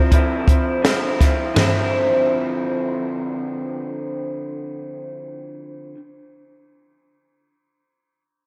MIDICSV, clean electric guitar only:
0, 0, Header, 1, 2, 480
1, 0, Start_track
1, 0, Key_signature, -1, "minor"
1, 0, Tempo, 722892
1, 1038, Time_signature, 4, 2, 24, 8
1, 5621, End_track
2, 0, Start_track
2, 0, Title_t, "Clean electric guitar"
2, 0, Program_c, 0, 27
2, 0, Note_on_c, 0, 53, 43
2, 0, Note_on_c, 0, 60, 49
2, 0, Note_on_c, 0, 64, 49
2, 70, Note_off_c, 0, 53, 0
2, 73, Note_on_c, 0, 50, 73
2, 74, Note_off_c, 0, 64, 0
2, 75, Note_off_c, 0, 60, 0
2, 78, Note_on_c, 0, 53, 84
2, 83, Note_on_c, 0, 60, 89
2, 91, Note_on_c, 0, 64, 85
2, 299, Note_off_c, 0, 64, 0
2, 307, Note_on_c, 0, 64, 51
2, 313, Note_off_c, 0, 60, 0
2, 315, Note_off_c, 0, 50, 0
2, 318, Note_off_c, 0, 53, 0
2, 321, Note_on_c, 0, 60, 51
2, 332, Note_on_c, 0, 53, 41
2, 546, Note_on_c, 0, 50, 52
2, 547, Note_off_c, 0, 53, 0
2, 552, Note_off_c, 0, 64, 0
2, 554, Note_off_c, 0, 60, 0
2, 555, Note_on_c, 0, 53, 57
2, 562, Note_on_c, 0, 60, 59
2, 570, Note_on_c, 0, 64, 53
2, 783, Note_off_c, 0, 64, 0
2, 791, Note_on_c, 0, 64, 47
2, 792, Note_off_c, 0, 50, 0
2, 797, Note_off_c, 0, 53, 0
2, 797, Note_off_c, 0, 60, 0
2, 805, Note_on_c, 0, 60, 43
2, 813, Note_on_c, 0, 53, 43
2, 1023, Note_on_c, 0, 50, 65
2, 1034, Note_off_c, 0, 53, 0
2, 1035, Note_off_c, 0, 64, 0
2, 1041, Note_off_c, 0, 60, 0
2, 1042, Note_on_c, 0, 53, 65
2, 1056, Note_on_c, 0, 60, 71
2, 1068, Note_on_c, 0, 64, 80
2, 3947, Note_off_c, 0, 50, 0
2, 3956, Note_off_c, 0, 53, 0
2, 3963, Note_off_c, 0, 60, 0
2, 3969, Note_off_c, 0, 64, 0
2, 5621, End_track
0, 0, End_of_file